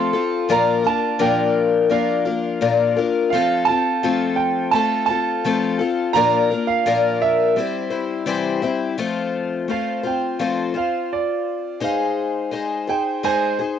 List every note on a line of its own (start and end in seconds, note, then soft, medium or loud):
0.00 0.14 F3 medium
0.00 0.14 A3 medium
0.00 0.14 C4 medium
0.00 0.13 F4 medium
0.00 0.12 A4 medium
0.00 0.47 C6 loud
0.13 0.49 C4 soft
0.13 0.49 F4 medium
0.13 0.49 A4 medium
0.49 0.85 A#2 medium
0.49 0.85 F3 medium
0.49 0.85 A#3 medium
0.49 0.85 D4 medium
0.49 0.84 F4 medium
0.49 0.83 A#4 medium
0.49 0.87 A#5 loud
0.84 1.18 A#3 soft
0.84 1.18 D4 soft
0.84 1.19 F4 soft
0.84 1.19 A#4 medium
0.84 1.22 A5 medium
1.19 1.91 A#2 medium
1.19 2.61 F3 medium
1.19 1.88 A#3 medium
1.19 1.89 D4 medium
1.19 1.91 F4 medium
1.19 1.91 A#4 medium
1.19 1.94 G5 medium
1.90 2.26 A#3 medium
1.90 2.26 D4 medium
1.90 2.25 F4 medium
1.90 2.24 A#4 medium
1.90 2.93 F5 medium
2.25 2.61 A#3 soft
2.25 2.61 D4 soft
2.25 2.61 F4 medium
2.25 2.61 A#4 medium
2.61 2.97 A#2 medium
2.61 2.97 F3 medium
2.61 2.97 A#3 medium
2.61 2.97 D4 medium
2.61 2.97 F4 medium
2.61 2.95 A#4 medium
2.97 3.32 A#3 medium
2.97 3.33 D4 medium
2.97 3.33 F4 medium
2.97 3.32 A#4 medium
3.30 3.68 F3 medium
3.30 3.68 A3 medium
3.30 3.69 C4 medium
3.30 3.68 F4 medium
3.30 3.68 F5 medium
3.35 3.67 A4 loud
3.65 4.03 F4 soft
3.65 4.03 A4 soft
3.65 4.40 A5 loud
3.71 4.03 C4 soft
4.03 4.74 F3 medium
4.03 4.72 A3 medium
4.03 4.73 C4 medium
4.03 4.74 F4 medium
4.03 4.74 A4 medium
4.36 4.74 G5 medium
4.71 5.09 A3 medium
4.71 5.09 C4 medium
4.71 5.09 F4 medium
4.71 5.07 A4 medium
4.71 5.05 A5 loud
5.06 5.44 A4 medium
5.06 6.17 A5 loud
5.10 5.45 C4 soft
5.10 5.45 F4 medium
5.45 5.80 F3 medium
5.45 5.80 A3 medium
5.45 5.80 C4 medium
5.45 5.79 F4 medium
5.45 5.78 A4 medium
5.79 6.16 C4 soft
5.79 6.15 F4 soft
5.79 6.15 A4 medium
6.13 6.51 A#2 medium
6.13 6.51 F3 medium
6.13 6.51 A#3 medium
6.13 6.51 D4 medium
6.13 6.50 F4 medium
6.13 6.49 A#4 medium
6.13 6.69 A#5 loud
6.50 6.85 A#3 soft
6.50 6.86 D4 soft
6.50 6.86 F4 medium
6.50 6.86 A#4 medium
6.67 7.17 F5 medium
6.86 7.57 A#2 medium
6.86 7.57 F3 medium
6.86 7.56 A#3 medium
6.86 7.56 D4 medium
6.86 7.58 F4 medium
6.86 7.58 A#4 loud
7.22 8.24 E5 loud
7.56 7.91 G3 medium
7.56 7.91 C4 medium
7.56 7.90 E4 medium
7.56 7.89 C5 medium
7.90 8.26 G3 soft
7.90 8.26 C4 soft
7.90 8.26 E4 soft
7.90 8.27 C5 medium
8.26 8.62 C3 medium
8.26 8.63 E3 medium
8.26 8.63 G3 medium
8.26 8.63 C4 medium
8.26 8.62 E4 medium
8.26 8.61 C5 loud
8.62 8.98 G3 medium
8.62 8.97 C4 medium
8.62 8.98 E4 medium
8.62 8.98 C5 medium
8.98 9.69 F3 medium
8.98 9.67 A3 medium
8.98 9.69 C4 medium
8.98 9.69 F4 medium
8.98 9.70 C5 medium
9.68 10.04 A3 medium
9.68 10.05 C4 medium
9.68 10.03 F4 medium
9.68 10.02 C5 medium
9.68 10.04 F5 medium
10.03 10.39 C4 soft
10.03 10.39 F4 soft
10.03 10.40 C5 medium
10.03 10.75 G5 medium
10.39 10.75 F3 medium
10.39 10.76 A3 medium
10.39 10.75 C4 medium
10.39 10.74 F4 medium
10.39 10.73 C5 medium
10.74 11.81 C4 soft
10.74 11.81 F4 soft
10.74 11.81 C5 soft
10.74 11.11 F5 medium
11.13 11.81 D5 medium
11.80 12.50 G#3 medium
11.80 12.52 D#4 medium
11.80 12.52 G#4 medium
11.80 12.53 C5 medium
11.80 12.87 F5 medium
12.51 12.88 G#3 medium
12.51 12.88 D#4 medium
12.51 12.88 G#4 medium
12.51 12.86 C5 medium
12.87 13.23 D#4 soft
12.87 13.23 G#4 soft
12.87 13.23 C5 soft
12.87 13.24 G5 medium
13.23 13.59 G#3 medium
13.23 13.60 D#4 medium
13.23 13.58 G#4 medium
13.23 13.57 C5 medium
13.23 13.59 G#5 medium
13.59 13.79 D#4 soft
13.59 13.79 G#4 soft
13.59 13.79 C5 medium